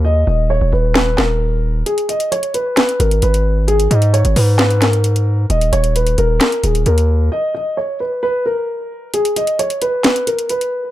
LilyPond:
<<
  \new Staff \with { instrumentName = "Grand piano" } { \time 4/4 \key dis \phrygian \tempo 4 = 132 dis''8 dis''8 cis''8 b'8 b'8 ais'4. | gis'8 dis''8 cis''8 b'8 b'8 ais'8 b'4 | gis'8 dis''8 cis''8 b'8 b'8 ais'4. | dis''8 cis''8 b'8 ais'8 ais'8 gis'8 ais'4 |
dis''8 dis''8 cis''8 b'8 b'8 ais'4. | gis'8 dis''8 cis''8 b'8 b'8 ais'8 b'4 | }
  \new Staff \with { instrumentName = "808-style bass" } { \clef bass \time 4/4 \key dis \phrygian dis,8 dis,,8. dis,,16 dis,,4 dis,,4. | r2 r8 gis,,8 gis,,4~ | gis,,8 gis,8. gis,,16 gis,2~ gis,8 | dis,,8 dis,,4 dis,,8 r8 dis,,8 dis,4 |
r1 | r1 | }
  \new DrumStaff \with { instrumentName = "Drums" } \drummode { \time 4/4 r4 r4 <hc sn>8 <hc sn>8 r4 | hh16 hh16 hh16 hh16 hh16 hh16 hh8 <hc hh sn>16 hh16 hh16 hh16 hh16 hh8. | hh16 hh16 hh16 hh16 hh16 hh16 hho8 <hc hh sn>16 hh16 <hc hh sn>16 hh16 hh16 hh8. | hh16 hh16 hh16 hh16 hh16 hh16 hh8 <hc hh sn>16 hh16 hh16 hh16 hh16 hh8. |
r4 r4 r4 r4 | hh16 hh16 hh16 hh16 hh16 hh16 hh8 <hc hh sn>16 hh16 hh16 hh16 hh16 hh8. | }
>>